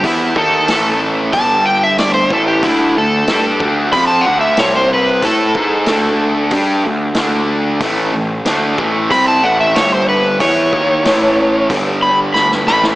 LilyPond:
<<
  \new Staff \with { instrumentName = "Electric slide guitar" } { \time 4/4 \key d \major \tempo 4 = 93 e'8 a'4 r8 a''8 g''16 e''16 d''16 c''16 a'16 g'16 | e'8 a'4 r8 b''16 a''16 fis''16 e''16 cis''16 c''16 b'8 | a'2 r2 | r2 b''16 a''16 fis''16 e''16 cis''16 c''16 b'8 |
cis''2 r8 b''16 r16 b''16 r16 b''16 r16 | }
  \new Staff \with { instrumentName = "Distorted electric guitar" } { \clef bass \time 4/4 \key d \major <e b e'>8 <dis bes dis'>8 <a, e a>4 <g, d g>4. <a, e a>8 | <d a d'>8 <d a>8 <g d' g'>8 <d a d'>8 <f c' f'>8 <d a d'>8 <c g c'>4 | <a e' a'>8 <gis dis' gis'>8 <d a d'>4 <g d' g'>8 <d a>8 <d a d'>4 | <a, e a>8 <a, e>8 <d a d'>8 <a, e a>8 <c g c'>8 <a, e a>8 <g, d g>4 |
<e b e'>8 <dis bes dis'>8 <a, e a>4 <g, d g>4. <a, e a>8 | }
  \new Staff \with { instrumentName = "Picked electric bass" } { \clef bass \time 4/4 \key d \major e,8 dis,8 a,,4 g,,4. a,,8 | d,8 d,8 g,8 d,8 f,8 d,8 c,4 | a,8 gis,8 d,4 g,8 d,8 d,4 | a,,8 a,,8 d,8 a,,8 c,8 a,,8 g,,4 |
e,8 dis,8 a,,4 g,,4. a,,8 | }
  \new DrumStaff \with { instrumentName = "Drums" } \drummode { \time 4/4 <hho bd>8 bd8 <hho sn>4 <hho bd>4 <hho sn>8 bd8 | <hho bd>4 <hho sn>8 bd8 <hho bd>4 <hho sn>4 | <hho bd>8 bd8 <hho sn>4 <hho bd>4 <hho sn>4 | <hho bd>4 <hho sn>8 bd8 <hho bd>4 <hho sn>4 |
<hho bd>8 bd8 <hho sn>4 <hho bd>4 sn16 sn16 sn16 sn16 | }
>>